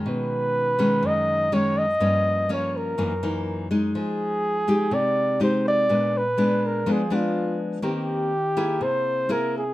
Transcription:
Already playing: D#3 G#3 C#4
0.06 B2 B4
0.79 D#3 G#3 C#4
1.03 F#2
1.07 D#5
1.52 D#3 G#3 C#4 C#5
1.79 D#5
2.00 G2 F3 A#3 C#4
2.49 F3 A#3 C#4 C#5
2.77 A#4
2.98 F#2 E3 A#3 D#4
3.23 E3 A#3 D#4
3.71 G#3 D#4
3.95 F3 G#4
4.68 G#3 D#4 G4
4.91 C3 D5
5.40 G#3 D#4 G4 C5
5.68 D5
5.89 A#2 G#3 B3 D4
6.18 B4
6.38 G#3 B3 D4
6.66 A#4
6.86 F3 G#3 B3 D4
6.92 G#4
7.10 G#3 B3 D4
7.15 F4
7.82 D#3 A#3 C4 G4
7.87 G4
8.57 A#3 E4 G#4
8.81 C3 C5
9.29 A#3 E4 G#4 A#4
9.58 G#4

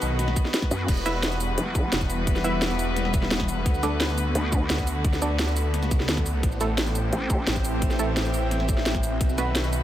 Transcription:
Already playing: D#3 B3 F#4 B4 D#5 F#5
0.02 B1, open hi-hat, shaker
0.19 snare, closed hi-hat
0.28 snare
0.36 kick, closed hi-hat, shaker
0.45 snare
0.54 snare, closed hi-hat
0.62 kick, snare, shaker
0.71 F#2, open hi-hat, shaker
0.88 E1 E3 G3, kick, closed hi-hat, crash
0.97 G3, shaker
1.06 E1 E4 B4 E5, snare, closed hi-hat, shaker
1.23 snare, closed hi-hat
1.32 shaker
1.40 open hi-hat, shaker
1.47 E5
1.58 E1, closed hi-hat
1.75 kick, closed hi-hat, shaker
1.92 E1, snare, closed hi-hat
2.01 kick, shaker
2.10 open hi-hat, shaker
2.27 kick, closed hi-hat
2.36 snare, shaker
2.44 E1 E4 B4 E5, closed hi-hat, shaker
2.62 snare, closed hi-hat
2.70 shaker
2.79 open hi-hat, shaker
2.96 snare, closed hi-hat
3.05 snare
3.14 kick, closed hi-hat, shaker
3.22 snare
3.31 E1, snare, closed hi-hat
3.40 kick, snare, shaker
3.48 open hi-hat, shaker
3.66 D2 D3 A3 F#4, kick, closed hi-hat
3.74 D5, shaker
3.83 D2 D4 A4 D5, snare, closed hi-hat, shaker
4.00 snare, closed hi-hat
4.05 A4, shaker
4.18 open hi-hat, shaker
4.35 D2, closed hi-hat
4.52 kick, closed hi-hat, shaker
4.70 D2, snare, closed hi-hat
4.78 kick, shaker
4.87 open hi-hat, shaker
5.05 kick, closed hi-hat
5.13 snare, shaker
5.22 D2 D4 A4 D5, closed hi-hat, shaker
5.39 snare, closed hi-hat
5.48 shaker
5.57 open hi-hat, shaker
5.74 snare, closed hi-hat
5.82 C#2, snare, shaker
5.91 kick, closed hi-hat, shaker
6.00 snare
6.09 D2, snare, closed hi-hat
6.17 kick, snare, shaker
6.26 open hi-hat, shaker
6.43 A1 E3 C4 G4 C5, kick, closed hi-hat
6.52 shaker
6.61 A1 A3 E4 A4 E5, snare, closed hi-hat, shaker
6.78 snare, closed hi-hat
6.87 shaker
6.95 open hi-hat, shaker
7.13 A1, closed hi-hat
7.30 G5, kick, closed hi-hat, shaker
7.47 A1, snare, closed hi-hat
7.56 kick, shaker
7.65 open hi-hat, shaker
7.82 kick, closed hi-hat
7.91 snare, shaker
7.99 A1 A3 E4 A4, closed hi-hat, shaker
8.17 snare, closed hi-hat
8.25 shaker
8.34 open hi-hat, shaker
8.51 snare, closed hi-hat
8.60 snare
8.69 kick, closed hi-hat, shaker
8.77 snare
8.86 A1, snare, closed hi-hat
8.95 kick, snare, shaker
9.03 open hi-hat, shaker
9.21 B1 D#3 B3 F#4 B4, kick, closed hi-hat
9.29 shaker
9.38 B1 B3 F#4 B4, snare, closed hi-hat, shaker
9.55 snare, closed hi-hat
9.64 shaker
9.73 open hi-hat, shaker

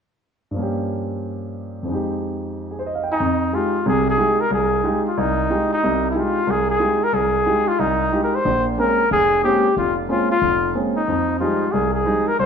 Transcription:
0.51 G2 F3
0.57 A#3 C#4
0.62 G4
1.83 F2 F3
1.88 G#3 D#4
1.94 G4
2.71 G#4
2.79 C5
2.86 D#5
2.95 F5
3.03 G5
3.12 D#4 G#5
3.20 F2
3.53 G#3 D#4 F4 G4
3.86 C2 C3 G#4
4.10 G#4
4.17 G#3 D#4 F4 G4
4.41 A#4
4.50 C2 G#4
4.84 G#3 D#4 F4 G4
5.08 F4
5.17 C2 D#4
5.50 G#3 D#4 F4 G4
5.73 D#4
5.84 C2 C3
6.11 E4
6.15 G#3 D#4 F4 G4
6.47 C2 G#4
6.70 G#4
6.79 G#3 D#4 F4 G4
7.03 A#4
7.13 C2 G#4
7.46 G#3 D#4 F4 G4
7.68 F4
7.79 C2 D#4
8.12 G#3 D#4 F4 G4
8.24 A#4
8.35 C5
8.45 A#1 A#2
8.78 G#3 A#3 C4 C#4 A#4
9.11 F1 G#4
9.43 G#3 A#3 C4 C#4 G4
9.77 F1 F4
10.09 G#3 A#3 C4 C#4 F4
10.32 F4
10.42 F1
10.74 G#3 A#3 C4 C#4
10.96 D#4
11.08 F2 F3
11.40 F3 G3 G#3 D#4 F4
11.72 C2 G#4
11.94 G#4
12.05 F3 G3 G#3 D#4
12.28 A#4
12.39 C2 C5

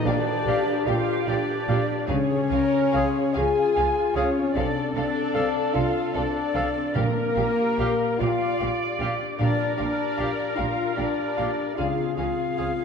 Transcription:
Already playing: A#2 D4 G4 D5 F5 G5
0.04 A#1 A#2 D4 F4 G4 D5 F5
0.27 G4
0.45 A#1 A#2 G4 D5 F5
0.70 F5
0.85 A#1 A#2 F4 G4 F5
0.90 G5
1.11 F5
1.27 A#1 A#2 D4 G4 D5 F5
1.51 G4
1.68 A#1 A#2 F4 G4 F5
1.91 D4
2.07 C#2 C#3 C#4 G#4 C#5 F5
2.49 C#2 C#3 F4 G#4 A#4 F5
2.75 G#4
2.92 C#2 C#3 G#4 F5
2.96 C6
3.18 F5
3.34 C#2 C#3 F4 G#4 F5 G#5
3.58 F5
3.76 C#2 C#3 G#4 F5
3.98 G#4
4.15 C#2 C#3 C#4 F4 G#4 C#5 F5
4.38 C4
4.52 C2 C3 D4 D5 F5
4.56 C3 A4
4.77 C4
4.93 C2 C3 D4 F4 A4 D5 F5
5.16 A4
5.34 C2 C3 A4 C5 F5
5.56 F5
5.74 C2 C3 F4 A4 F5 A5
5.97 F5
6.14 C2 C3 D4 A4 C5 D5 F5
6.35 A4
6.55 C2 C3 F4 A4 F5
6.76 C4
6.94 A#1 A#2 A#3 G4 A#4 F5
7.17 D4
7.36 A#1 A#2 F4 G4 F5
7.58 G4
7.77 A#1 A#2 G4 D5 F5
8.00 F5
8.19 A#1 A#2 F4 G4 D5 F5 G5
8.42 F5
8.60 A#1 A#2 G4 D5 F5
8.83 G4
8.99 A#1 A#2 F4 G4 F5
9.22 D4
9.39 A#1 A#2 D4 G4 A#4 D5 F5
9.61 D4
9.76 A#2 D4 F4 G4 D5 F5
9.80 A#1
10.00 G4
10.17 A#1 A#2 G4 F5
10.39 F5
10.56 A#1 A#2 F4 G4 F5 G5
10.79 F5
10.95 A#1 A#2 D4 G4 D5 F5
10.99 D5
11.19 G4
11.37 A#1 A#2 F4 G4 F5
11.58 D4
11.75 C#2 C#3 F4 G#4 F5
11.98 C4
12.16 C#2 C#3 F4 G#4 F5
12.40 G#4
12.58 C#2 C#3 G#4 C5 F5
12.80 F5

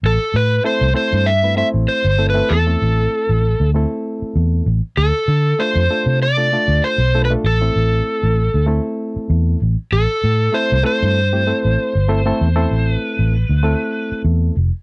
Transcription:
0.03 A1 A4
0.34 A2 B4
0.64 A3 C4 E4 A4 C5
0.81 C2
0.94 A3 C4 E4 A4 C5
1.13 G2
1.26 E5
1.43 A3 C4 E4 B4
1.56 A3 C4 E4 C5 E5
1.74 A1
1.88 C5
2.05 G1
2.18 A3 C4 E4 A4
2.30 B4
2.34 A3 C4 E4 A4
2.49 E2 A4
2.67 A3 C4 E4 A4
2.82 A1
3.29 A1
3.60 D2
3.75 A3 C4 E4 A4
4.22 muted fingered electric bass stroke
4.36 E2
4.66 A1
4.97 D2 A4
5.28 D3
5.59 A3 D4 F4 A4 C5
5.75 F2
5.91 A3 D4 F4 A4
6.06 C3
6.22 D5
6.37 A3 D4 F4 A4
6.53 A3 D4 F4 A4
6.68 D2
6.84 C5
6.98 B1
7.14 A3 D4 F4 A4
7.25 B4
7.30 A3 D4 F4 A4
7.44 A1 A4
7.61 A3 C4 E4 A4
7.76 A1
8.23 A1
8.54 D2
8.66 A3 C4 E4 A4
9.16 muted fingered electric bass stroke
9.30 E2
9.62 A1
9.92 A1 A4
10.24 A2
10.52 A3 C4 E4 A4 C5
10.72 C2
10.83 A3 C4 E4 A4 C5
11.03 G2
11.33 A3 C4 E4 G4
11.47 A3 C4 E4 A4
11.65 A1
11.95 G1
12.08 A3 C4 E4 A4
12.26 A3 C4 E4 A4
12.41 E2
12.55 A3 C4 E4 A4
12.71 A1
12.94 B4
13.19 A1
13.49 D2
13.63 A3 C4 E4 A4
14.12 muted fingered electric bass stroke
14.24 E2
14.57 F1

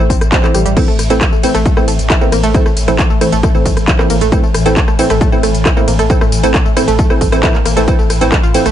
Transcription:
Already playing: A2 E3
0.00 E3 A3 C4
0.10 A1 C4, kick, open hi-hat, tambourine
0.21 A1, cross-stick, closed hi-hat, tambourine
0.32 C4, kick, clap, closed hi-hat, tambourine
0.43 E3 A3 C4, clap, tambourine
0.54 A1 G3, cross-stick, open hi-hat, tambourine
0.66 A1 G3, closed hi-hat, tambourine
0.77 A2 E3 A3 C4, kick, closed hi-hat, tambourine, crash
0.88 A1 A3, tambourine
0.99 A1, cross-stick, open hi-hat, ride, tambourine
1.10 A1 E3 A3 C4, closed hi-hat, tambourine
1.21 kick, cross-stick, clap, closed hi-hat, tambourine
1.32 A1 A3, tambourine
1.43 E3 A3 C4, open hi-hat, ride, tambourine
1.54 A1 A3, cross-stick, closed hi-hat, tambourine
1.65 A3, kick, closed hi-hat, tambourine
1.77 A1 E3 A3 C4, cross-stick, tambourine
1.88 A1 A3, open hi-hat, ride, tambourine
1.99 A1, closed hi-hat, tambourine
2.10 E4, kick, cross-stick, clap, closed hi-hat, tambourine
2.21 E3 A3 A#3 C4, tambourine
2.32 A1 A#3, cross-stick, open hi-hat, ride, tambourine
2.43 A1 A3, closed hi-hat, tambourine
2.54 E3 A3 C4, kick, closed hi-hat, tambourine
2.66 A1 A3, cross-stick, tambourine
2.77 A1, open hi-hat, ride, tambourine
2.88 A1 E3 A3 C4, cross-stick, closed hi-hat, tambourine
2.99 kick, clap, closed hi-hat, tambourine
3.10 A1 A3, tambourine
3.21 E3 A3 C4, cross-stick, open hi-hat, ride, tambourine
3.32 A1 A3, closed hi-hat, tambourine
3.43 A3, kick, cross-stick, closed hi-hat, tambourine
3.54 A1 E3 A3 C4, tambourine
3.65 A1 A3, kick, open hi-hat, ride, tambourine
3.77 A1, cross-stick, closed hi-hat, tambourine
3.88 E4, kick, clap, closed hi-hat, tambourine
3.99 E3 A3 A#3 C4, cross-stick, clap, tambourine
4.10 A1 A#3, open hi-hat, ride, tambourine
4.21 A1 A3, closed hi-hat, tambourine
4.32 E3 A3 C4, kick, cross-stick, closed hi-hat, tambourine
4.43 A1 A3, tambourine
4.54 A1, cross-stick, open hi-hat, ride, tambourine
4.66 A1 E3 A3 C4, closed hi-hat, tambourine
4.77 kick, clap, closed hi-hat, tambourine
4.88 A1 A3, cross-stick, tambourine
4.99 E3 A3 C4, open hi-hat, ride, tambourine
5.10 A1 A3, cross-stick, closed hi-hat, tambourine
5.21 A3, kick, closed hi-hat, tambourine
5.32 A1 E3 A3 C4, tambourine
5.43 A1 A3, cross-stick, open hi-hat, ride, tambourine
5.55 A1, closed hi-hat, tambourine
5.65 E4, kick, cross-stick, clap, closed hi-hat, tambourine
5.77 E3 A3 A#3 C4, tambourine
5.88 A1 A#3, open hi-hat, ride, tambourine
5.99 A1 A3, cross-stick, closed hi-hat, tambourine
6.10 E3 A3 C4, kick, closed hi-hat, tambourine
6.21 A1 A3, cross-stick, tambourine
6.32 A1, open hi-hat, ride, tambourine
6.43 A1 E3 A3 C4, closed hi-hat, tambourine
6.54 kick, cross-stick, clap, closed hi-hat, tambourine
6.66 A1 A3, tambourine
6.77 E3 A3 C4, cross-stick, open hi-hat, ride, tambourine
6.88 A1 A3, closed hi-hat, tambourine
6.99 A3, kick, closed hi-hat, tambourine
7.10 A1 E3 A3 C4, cross-stick, tambourine
7.21 A1 A3, kick, open hi-hat, ride, tambourine
7.32 A1 E3 A3 C4, cross-stick, closed hi-hat, tambourine
7.43 E3 A3 C4 E4, kick, clap, closed hi-hat, tambourine
7.54 A#3, clap, tambourine
7.65 A1 A#3, cross-stick, open hi-hat, ride, tambourine
7.77 A1 E3 A3 C4, closed hi-hat, tambourine
7.88 E3 A3 C4, kick, closed hi-hat, tambourine
7.99 A1 A3, tambourine
8.10 A1, cross-stick, open hi-hat, ride, tambourine
8.21 A1 E3 A3 C4, closed hi-hat, tambourine
8.32 kick, cross-stick, clap, closed hi-hat, tambourine
8.43 A1 F4, tambourine
8.54 E3 A3 C4, open hi-hat, ride, tambourine
8.65 A1 A3, cross-stick, closed hi-hat, tambourine

